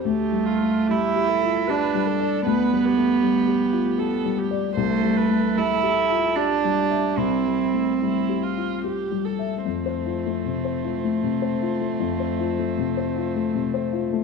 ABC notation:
X:1
M:3/4
L:1/16
Q:1/4=77
K:Flyd
V:1 name="Viola"
G2 F2 G2 A2 B2 A2 | B2 G6 A2 G2 | c2 B2 A4 G4 | E4 E2 F2 G2 A2 |
C12- | C12 |]
V:2 name="Cello"
A,4 E4 D4 | B,8- B,2 z2 | A,4 E4 D4 | C8 z4 |
A,12- | A,12 |]
V:3 name="Grand piano"
(3D,,2 G,2 A,2 (3G,2 G2 F2 (3G2 G,2 d2 | (3D,,2 G,2 A,2 (3G,2 G2 F2 (3G2 G,2 d2 | (3C,,2 G,2 A,2 (3G,2 G2 F2 (3G2 G,2 e2 | (3C,,2 G,2 A,2 (3G,2 G2 F2 (3G2 G,2 e2 |
F,, c F A, C, c F A, C, c F A, | F,, c F A, C, c F A, C, c F A, |]